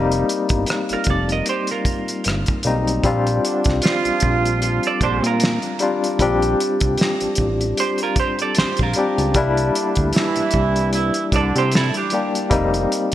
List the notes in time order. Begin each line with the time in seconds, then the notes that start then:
Already playing: F1 G3 A#3 C4 D#4
0.12 closed hi-hat
0.29 closed hi-hat
0.49 G1, kick, closed hi-hat
0.66 cross-stick, closed hi-hat
0.89 F1 F4, closed hi-hat
0.93 A#4
1.04 F1, kick, closed hi-hat
1.10 A4 D5
1.29 A#4 D#5, closed hi-hat
1.46 C5, closed hi-hat
1.50 G4
1.67 closed hi-hat
1.71 F4 A#4, cross-stick
1.85 kick, closed hi-hat
2.08 closed hi-hat
2.24 G1, cross-stick, closed hi-hat
2.46 kick, closed hi-hat
2.63 B1 G3 A#3 C4 D#4, closed hi-hat
2.87 closed hi-hat
3.04 A#1 G3 C4 D4 F4, kick, closed hi-hat
3.27 closed hi-hat
3.44 D3 D4, closed hi-hat
3.64 C2, kick, closed hi-hat
3.69 snare
3.82 F3 F4, snare, closed hi-hat
4.05 A#1, closed hi-hat
4.20 A#1, kick, closed hi-hat
4.45 closed hi-hat
4.62 F3 F4, closed hi-hat
4.83 A4, closed hi-hat
4.87 D5
5.01 A#1 D3 D4 G4 C5, kick, closed hi-hat
5.22 A#2 F4, closed hi-hat
5.27 A#4
5.40 snare, closed hi-hat
5.62 closed hi-hat
5.79 G3 C4 D4 F4, closed hi-hat
6.04 closed hi-hat
6.19 A#1 G3 C4 D4 G4, kick, closed hi-hat
6.42 closed hi-hat
6.60 closed hi-hat
6.80 C2, kick, closed hi-hat
6.98 snare, closed hi-hat
7.21 A1, closed hi-hat
7.35 A1, kick, closed hi-hat
7.61 closed hi-hat
7.77 G4 C5, closed hi-hat
7.98 closed hi-hat
8.03 F4 A#4
8.16 C5, kick, closed hi-hat
8.20 G4
8.39 A4 D5, closed hi-hat
8.55 A#1 C5, snare, closed hi-hat
8.60 G4
8.77 A#1, kick, closed hi-hat
8.83 F4 A#4
8.94 G3 C4, closed hi-hat
8.98 D4 G4
9.18 C#2, closed hi-hat
9.34 C2 G3 A#3 D4 E4, kick, closed hi-hat
9.57 closed hi-hat
9.75 D3 D4, closed hi-hat
9.95 D2, kick, closed hi-hat
10.13 E3 E4, snare, closed hi-hat
10.36 C2, closed hi-hat
10.51 C2, kick, closed hi-hat
10.76 closed hi-hat
10.93 E3 E4, closed hi-hat
11.14 closed hi-hat
11.32 C2 D3 D4 D5, kick, closed hi-hat
11.37 A4
11.56 C3 G4 C5, closed hi-hat
11.72 snare, closed hi-hat
11.76 E4 A4
11.94 G4, closed hi-hat
11.98 D4
12.10 G3 A#3 D4, closed hi-hat
12.14 G4
12.35 closed hi-hat
12.50 F1 G3 A#3 C4 D#4, kick, closed hi-hat
12.74 closed hi-hat
12.92 closed hi-hat